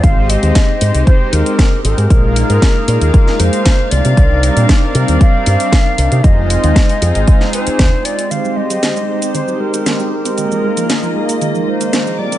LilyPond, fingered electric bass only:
\new Staff \with { instrumentName = "Fingered electric bass" } { \clef bass \time 4/4 \key aes \lydian \tempo 4 = 116 aes,,8 r16 ees,16 r8 aes,16 c,16 r8 ees,16 r8. aes,,16 aes,16 | bes,,8 r16 aes,16 r8 bes,16 ees,16 r8 f,16 r8. c,16 c16 | c,8 r16 bes,16 r8 c16 ees,16 r8 g,16 r8. c,16 c16 | f,,8 r16 ees,16 r8 f,16 aes,,16 r4 ees,16 r8. |
r1 | r1 | }